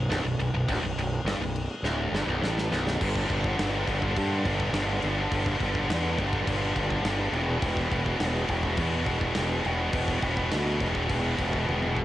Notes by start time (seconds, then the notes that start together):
Already playing: B0
0.10 B0 B1, snare, crash
0.24 B0 B1
0.39 B0 B1, crash
0.54 B0 B1
0.68 D1 D2, kick, crash
0.83 B0 B1
0.96 B0 B1, crash
1.24 G1 G2, snare, crash
1.39 B0 B1
1.56 crash
1.83 D1 D2, snare
2.12 G1 G2, snare
2.27 B0 B1
2.42 A1 A2, snare
2.58 snare
2.71 B0 B1, snare
2.87 snare
3.01 G1 G2 D3, kick, crash
3.10 G2 D3
3.15 G2 D3, kick
3.25 G2 D3
3.30 G1 G2 D3, kick, crash
3.41 G2 D3, kick
3.48 G2 D3
3.55 G1 G2 D3
3.59 G2 D3, snare, crash
3.71 G2 D3
3.78 G2 D3
3.85 G1 G2 D3, kick, crash
3.92 G2 D3
4.01 G2 D3, kick
4.08 G2 D3
4.16 G2 D3, kick, crash
4.24 G2 D3
4.32 G2 D3
4.38 G2 D3
4.45 G1 G2 D3, kick, crash
4.55 G2 D3
4.60 G2 D3, kick
4.69 G1 G2 D3
4.74 G2, snare, crash
4.78 D3
4.85 G2 D3
4.93 G2 D3
5.00 G1 G2 D3, crash
5.09 G2 D3
5.16 G2 D3
5.22 G2 D3
5.32 G1 G2 D3, kick, crash
5.40 G2 D3
5.46 G2 D3, kick
5.55 G2 D3
5.60 G1 G2, kick, crash
5.64 D3
5.70 G2 D3
5.75 G2 D3, kick
5.86 E2 G2 D3, snare, crash
5.93 G2 D3
6.02 G2 D3
6.09 G2 D3
6.18 G1 G2 D3, kick, crash
6.24 G2 D3
6.33 G2 D3, kick
6.41 G2 D3
6.47 G1 G2 D3, kick, crash
6.56 G2 D3
6.65 G2 D3
6.71 G2 D3
6.76 G1 G2, kick, crash
6.80 D3
6.87 G2 D3, kick
6.96 G2 D3
7.02 G1 G2 D3, snare, crash
7.11 G2 D3
7.20 G2 D3
7.26 G2 D3
7.32 E1 E2 B2, crash
7.41 E2 B2
7.49 E2 B2
7.57 E2 B2
7.62 E1 E2, kick, crash
7.66 B2
7.71 E2 B2
7.77 E2, kick
7.81 B2
7.87 E2 B2
7.91 E1 E2, kick, crash
7.97 B2
8.03 E2 B2, kick
8.10 E2 B2
8.18 E1 E2 B2, snare, crash
8.26 E2 B2
8.33 E2 B2
8.41 E2 B2
8.48 E1 E2 B2, kick, crash
8.56 E2 B2
8.63 E2 B2, kick
8.71 E2 B2
8.77 E2 B2, kick, crash
8.87 E2 B2
8.95 E2 B2
9.04 E1 E2 B2, kick, crash
9.11 E2 B2
9.17 E2 B2, kick
9.26 E2 B2
9.34 E1 E2 B2, snare, crash
9.41 E2 B2
9.50 E2 B2
9.57 E2 B2
9.65 E1 E2 B2, crash
9.73 E2 B2
9.81 E2 B2
9.88 E2 B2
9.93 E1 E2, kick, crash
9.97 B2
10.04 E2 B2, kick
10.11 E2 B2
10.19 E1 E2 B2, kick, crash
10.27 E2 B2
10.35 E2 B2, kick
10.42 E2 B2
10.51 D2 E2 B2, snare, crash
10.57 E2 B2
10.65 E2 B2
10.75 E2 B2
10.80 E1 E2 B2, kick, crash
10.89 E2 B2
10.95 E2 B2, kick
11.04 E2 B2
11.09 E1 E2 B2, kick, crash
11.20 E2 B2
11.28 E2 B2
11.35 E1 E2 B2, kick, crash
11.43 E2 B2
11.51 E2 B2, kick
11.58 E2 B2
11.66 E1 E2 B2, high tom
11.74 E2 B2
11.80 E2 B2, mid tom
11.88 E2 B2
11.97 kick